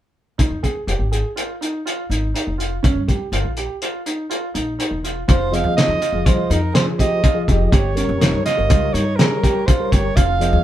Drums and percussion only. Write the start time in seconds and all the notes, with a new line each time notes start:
0.39 kick, closed hi-hat
0.64 kick, closed hi-hat
0.88 closed hi-hat
1.13 closed hi-hat
1.37 closed hi-hat
1.62 closed hi-hat
1.87 closed hi-hat
2.11 closed hi-hat
2.36 closed hi-hat
2.60 closed hi-hat
2.84 kick, closed hi-hat
3.08 kick, closed hi-hat
3.33 closed hi-hat
3.57 closed hi-hat
3.82 closed hi-hat
4.06 closed hi-hat
4.31 closed hi-hat
4.55 closed hi-hat
4.80 closed hi-hat
5.05 closed hi-hat
5.29 kick, closed hi-hat
5.54 closed hi-hat
5.78 snare, closed hi-hat
6.02 closed hi-hat
6.26 kick, closed hi-hat
6.51 closed hi-hat
6.75 snare, closed hi-hat
6.99 kick, closed hi-hat
7.24 kick, closed hi-hat
7.48 kick, closed hi-hat
7.72 kick, closed hi-hat
7.97 closed hi-hat
8.21 snare, closed hi-hat
8.46 snare, closed hi-hat
8.70 kick, closed hi-hat
8.95 closed hi-hat
9.19 snare, closed hi-hat
9.44 kick, closed hi-hat
9.68 kick, closed hi-hat
9.92 kick, closed hi-hat
10.17 kick, closed hi-hat
10.41 closed hi-hat